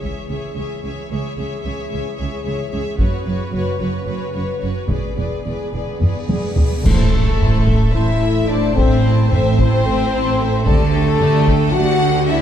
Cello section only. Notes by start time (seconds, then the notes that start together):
0.02 C#2
0.29 C#2
0.56 C#2
0.84 C#2
1.12 C#2
1.38 C#2
1.65 C#2
1.92 C#2
2.20 C#2
2.46 C#2
2.73 C#2
2.99 F#2
3.25 F#2
3.51 F#2
3.80 F#2
4.07 F#2
4.34 F#2
4.62 F#2
4.88 E2
5.17 E2
5.45 E2
5.73 E2
6.00 E2
6.28 E2
6.56 E2
6.84 A2
7.39 A2
7.94 A2
8.77 A2
9.32 A2
9.85 A2
10.67 D3
11.21 D3
11.75 D3